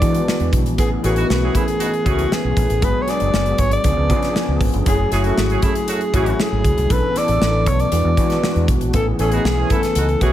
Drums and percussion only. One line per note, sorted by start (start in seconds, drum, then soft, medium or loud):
0.02 kick medium
0.02 closed hi-hat medium
0.15 closed hi-hat soft
0.28 snare loud
0.40 closed hi-hat soft
0.53 kick medium
0.53 closed hi-hat medium
0.66 closed hi-hat soft
0.78 kick medium
0.78 closed hi-hat medium
1.04 closed hi-hat medium
1.16 closed hi-hat soft
1.30 snare loud
1.55 kick medium
1.55 closed hi-hat medium
1.68 closed hi-hat soft
1.80 closed hi-hat medium
1.93 closed hi-hat soft
2.06 kick medium
2.06 closed hi-hat medium
2.19 closed hi-hat soft
2.32 snare loud
2.57 kick medium
2.57 closed hi-hat medium
2.70 closed hi-hat soft
2.82 kick loud
2.82 closed hi-hat medium
3.08 snare soft
3.08 closed hi-hat medium
3.20 closed hi-hat soft
3.34 snare loud
3.46 closed hi-hat soft
3.58 kick medium
3.58 closed hi-hat medium
3.71 closed hi-hat soft
3.84 kick medium
3.84 closed hi-hat medium
4.10 kick medium
4.10 closed hi-hat medium
4.22 snare soft
4.22 closed hi-hat soft
4.36 snare loud
4.61 kick medium
4.61 open hi-hat medium
4.74 closed hi-hat soft
4.86 kick loud
4.86 closed hi-hat medium
5.12 snare soft
5.12 closed hi-hat medium
5.24 closed hi-hat soft
5.38 snare loud
5.50 closed hi-hat soft
5.62 kick medium
5.62 closed hi-hat medium
5.75 closed hi-hat soft
5.88 closed hi-hat medium
6.01 closed hi-hat soft
6.14 kick medium
6.14 closed hi-hat medium
6.26 closed hi-hat soft
6.40 snare loud
6.64 kick medium
6.64 closed hi-hat medium
6.78 closed hi-hat soft
6.90 kick medium
6.90 closed hi-hat medium
7.16 snare soft
7.16 closed hi-hat medium
7.28 closed hi-hat soft
7.42 snare loud
7.66 kick medium
7.66 closed hi-hat medium
7.80 closed hi-hat soft
7.92 closed hi-hat medium
8.17 kick medium
8.17 closed hi-hat medium
8.30 snare soft
8.30 closed hi-hat soft
8.44 snare loud
8.56 closed hi-hat soft
8.68 kick medium
8.68 closed hi-hat medium
8.81 closed hi-hat soft
8.93 kick medium
8.93 closed hi-hat medium
9.19 closed hi-hat medium
9.31 closed hi-hat soft
9.45 snare loud
9.70 kick medium
9.70 closed hi-hat medium
9.83 snare soft
9.83 closed hi-hat soft
9.95 closed hi-hat medium
10.09 closed hi-hat soft
10.21 kick medium
10.21 closed hi-hat medium